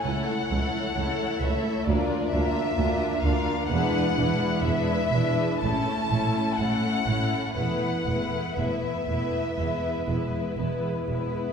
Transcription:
<<
  \new Staff \with { instrumentName = "Violin section" } { \time 4/4 \key a \major \tempo 4 = 62 fis''4. e''8 d''8 e''4 f''8 | fis''4 e''4 a''4 fis''4 | fis''4 e''2 r4 | }
  \new Staff \with { instrumentName = "Violin section" } { \time 4/4 \key a \major <a' cis''>8 <a' cis''>8 <a' cis''>8 <a' cis''>8 <f' bes'>8 <f' bes'>8 <f' bes'>8 <f' bes'>8 | <e' b'>8 <e' b'>8 <e' b'>8 <e' b'>8 <e' a'>8 <e' a'>8 <e' a'>8 <e' a'>8 | <e' b'>8 <e' b'>8 <e' b'>8 <e' b'>8 <e' b'>8 <e' b'>8 <e' b'>8 <e' b'>8 | }
  \new Staff \with { instrumentName = "Viola section" } { \time 4/4 \key a \major <a e'>8 <a e'>8 <a e'>8 <a e'>8 <bes d'>8 <bes d'>8 <bes d'>8 <bes d'>8 | <gis d'>8 <gis d'>8 <gis d'>8 <gis d'>8 <a cis'>8 <a cis'>8 <a cis'>8 <a cis'>8 | <a b>8 <a b>8 <a b>8 <a b>8 <gis b>8 <gis b>8 <gis b>8 <gis b>8 | }
  \new Staff \with { instrumentName = "Cello section" } { \clef bass \time 4/4 \key a \major cis,8 cis,8 cis,8 cis,8 d,8 d,8 d,8 d,8 | e,8 e,8 e,8 e,8 a,8 a,8 a,8 a,8 | e,8 e,8 e,8 e,8 e,8 e,8 e,8 e,8 | }
  \new Staff \with { instrumentName = "Double bass section" } { \clef bass \time 4/4 \key a \major cis,8 cis,8 cis,8 cis,8 d,8 d,8 d,8 d,8 | e,,8 e,,8 e,,8 e,,8 a,,8 a,,8 a,,8 a,,8 | e,,8 e,,8 e,,8 e,,8 e,,8 e,,8 e,,8 e,,8 | }
>>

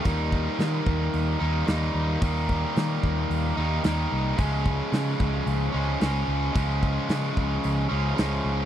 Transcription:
<<
  \new Staff \with { instrumentName = "Distorted electric guitar" } { \clef bass \time 4/4 \key ees \lydian \tempo 4 = 111 <ees g bes ees'>2~ <ees g bes ees'>8 <ees g bes ees'>8 <ees g bes ees'>4 | <ees g bes ees'>2~ <ees g bes ees'>8 <ees g bes ees'>8 <ees g bes ees'>4 | <des f aes des'>2~ <des f aes des'>8 <des f aes des'>8 <des f aes des'>4 | <des f aes des'>2~ <des f aes des'>8 <des f aes des'>8 <des f aes des'>4 | }
  \new Staff \with { instrumentName = "Picked electric bass" } { \clef bass \time 4/4 \key ees \lydian ees,4 ees8 ees,8 ees,8 ees,8 ees,8 ees,8 | ees,4 ees8 ees,8 ees,8 ees,8 ees,8 c,8 | des,4 des8 des,8 des,8 des,8 des,8 des,8 | des,4 des8 des,8 des,8 des,8 des,8 des,8 | }
  \new DrumStaff \with { instrumentName = "Drums" } \drummode { \time 4/4 <hho bd>8 bd8 <hho sn>8 bd8 hho4 <hho sn>4 | <hho bd>8 bd8 <hho sn>8 bd8 hho4 <hho sn>4 | <hho bd>8 bd8 <hho sn>8 bd8 hho4 <hho sn>4 | <hho bd>8 bd8 <hho sn>8 bd8 hho4 <hho sn>4 | }
>>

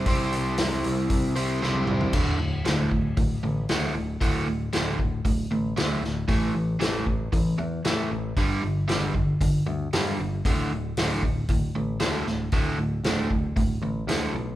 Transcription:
<<
  \new Staff \with { instrumentName = "Overdriven electric guitar" } { \clef bass \time 4/4 \key c \lydian \tempo 4 = 116 <c g c' e' g' c''>2~ <c g c' e' g' c''>8 <c g c' e' g' c''>8 <c g c' e' g' c''>4 | <d, a, d>8 <d, a,>8 <d, a, d>8 <d, a,>8 <d, a,>8 <d, a,>8 <d, a, d>8 <d, a,>8 | <d, a, d>8 <d, a,>8 <d, a, d>8 <d, a,>8 <d, a,>8 <d, a,>8 <d, a, d>8 <d, a,>8 | <a, e a>8 <a, e>8 <a, e a>8 <a, e>8 <a, e>8 <a, e>8 <a, e a>8 <a, e>8 |
<g, d g>8 <g, d>8 <g, d g>8 <g, d>8 <g, d>8 <g, d>8 <g, d g>8 <g, d>8 | <d, a, d>8 <d, a,>8 <d, a, d>8 <d, a,>8 <d, a,>8 <d, a,>8 <d, a, d>8 <d, a,>8 | <d, a, d>8 <d, a,>8 <d, a, d>8 <d, a,>8 <d, a,>8 <d, a,>8 <d, a, d>8 <d, a,>8 | }
  \new Staff \with { instrumentName = "Picked electric bass" } { \clef bass \time 4/4 \key c \lydian c,8 c,8 c,8 c,8 c,4 c,8 c,8 | d,,8 d,,8 d,,8 d,,8 d,,8 a,,8 d,8 d,,8 | d,,8 d,,8 d,,8 d,,8 d,,8 a,,8 d,8 d,,8 | a,,8 a,,8 a,,8 a,,8 a,,8 e,8 a,8 a,,8 |
g,,8 g,,8 g,,8 g,,8 g,,8 d,8 g,8 g,,8 | d,,8 d,,8 d,,8 d,,8 d,,8 a,,8 d,8 d,,8 | d,,8 d,,8 d,,8 d,,8 d,,8 a,,8 d,8 b,,8 | }
  \new DrumStaff \with { instrumentName = "Drums" } \drummode { \time 4/4 <hho bd>8 hho8 <hho sn>8 hho8 <hho bd>8 hho8 sn16 tommh16 toml16 tomfh16 | <cymc bd>4 <hho sn>8 bd8 <hho bd>4 <hho sn>4 | <hho bd>4 <hho sn>8 bd8 <hho bd>4 <hho sn>8 sn8 | <hho bd>4 <hho sn>8 bd8 <hho bd>4 <hho sn>4 |
<hho bd>4 <hho sn>8 bd8 <hho bd>4 <hho sn>4 | <hho bd>4 <hho sn>8 bd8 <hho bd>4 <hho sn>8 sn8 | <hho bd>4 <hho sn>8 bd8 <hho bd>4 <hho sn>4 | }
>>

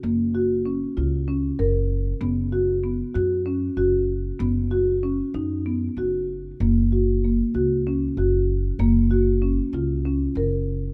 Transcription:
<<
  \new Staff \with { instrumentName = "Marimba" } { \time 7/8 \key fis \major \tempo 4 = 96 ais8 fis'8 cis'8 eis'8 cis'8 ais'4 | b8 fis'8 b8 fis'8 cis'8 fis'4 | b8 fis'8 cis'8 dis'8 b8 fis'4 | ais8 fis'8 ais8 fis'8 cis'8 fis'4 |
ais8 fis'8 cis'8 eis'8 cis'8 ais'4 | }
  \new Staff \with { instrumentName = "Upright bass" } { \clef bass \time 7/8 \key fis \major fis,,4. cis,4 fis,,4 | fis,,4. fis,4 fis,,4 | fis,,4. fis,4 fis,,4 | fis,,4. cis,4 fis,,4 |
fis,,4. cis,4 fis,,4 | }
>>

